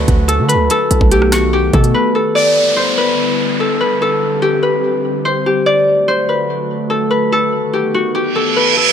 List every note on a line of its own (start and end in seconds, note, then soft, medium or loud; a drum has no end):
0.00 0.68 D3 medium
0.00 0.68 F#3 medium
0.00 0.68 A3 medium
0.00 0.68 F#4 medium
0.00 1.11 G4 medium
0.00 0.48 B4 medium
0.00 0.89 D5 loud
0.08 0.41 D2 loud
0.08 kick loud
0.08 closed hi-hat medium
0.28 0.70 A4 medium
0.28 closed hi-hat medium
0.39 0.56 D3 loud
0.48 1.94 B4 medium
0.48 closed hi-hat medium
0.55 0.69 D2 loud
0.70 2.34 D#3 medium
0.70 2.34 A3 medium
0.70 2.34 B3 medium
0.70 2.34 F#4 medium
0.70 1.73 A4 loud
0.70 closed hi-hat medium
0.91 1.00 B1 loud
0.91 closed hi-hat medium
1.01 1.71 B1 loud
1.01 kick loud
1.11 1.39 G4 medium
1.11 closed hi-hat medium
1.22 cross-stick medium
1.32 1.59 F#4 medium
1.32 cross-stick medium
1.32 snare medium
1.32 closed hi-hat medium
1.53 3.88 G4 medium
1.73 1.93 B2 loud
1.73 2.14 A4 medium
1.73 kick loud
1.73 closed hi-hat medium
1.84 closed hi-hat medium
1.94 2.82 B4 medium
2.15 3.60 A4 medium
2.35 7.28 D3 medium
2.35 5.63 G3 medium
2.35 3.99 B3 medium
2.35 3.99 E4 medium
2.35 4.20 D5 loud
2.35 downlifter medium
2.76 3.03 C5 medium
2.97 3.80 B4 medium
3.60 4.01 A4 medium
3.81 4.62 B4 medium
4.01 5.65 C4 medium
4.01 5.65 G4 medium
4.01 6.21 A4 loud
4.42 5.46 G4 medium
4.63 5.31 B4 medium
5.25 6.08 C5 medium
5.46 7.73 G4 medium
5.66 7.30 F#3 medium
5.66 8.93 A3 medium
5.66 7.30 F#4 medium
5.66 7.51 D5 loud
6.08 6.35 C5 medium
6.29 7.10 B4 medium
6.90 7.32 A4 medium
7.11 8.56 B4 medium
7.32 8.93 D#3 medium
7.32 8.93 B3 medium
7.32 8.93 F#4 medium
7.32 8.35 A4 loud
7.73 8.00 G4 medium
7.94 8.21 F#4 medium
8.15 8.93 G4 medium
8.15 reverse cymbal medium
8.35 8.76 A4 medium
8.56 8.93 B4 medium
8.77 8.93 A4 medium